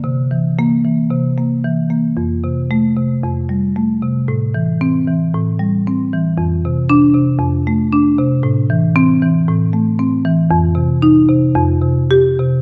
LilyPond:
<<
  \new Staff \with { instrumentName = "Marimba" } { \time 4/4 \key f \mixolydian \tempo 4 = 114 r4 bes4 r2 | r4 a4 r2 | r4 c'4 r2 | r4 d'4 r2 |
r4 c'4 r2 | r4 ees'4 r4 g'4 | }
  \new Staff \with { instrumentName = "Marimba" } { \clef bass \time 4/4 \key f \mixolydian c8 e4 e8 c8 bes8 e8 bes8 | f,8 c4 c8 f,8 g8 a8 c8 | a,8 e4 e8 a,8 g8 c'8 e8 | f,8 c4 c8 f,8 a8 d'8 c8 |
a,8 e4 e8 a,8 a8 c'8 e8 | f,8 c4 c8 f,8 c4 c8 | }
>>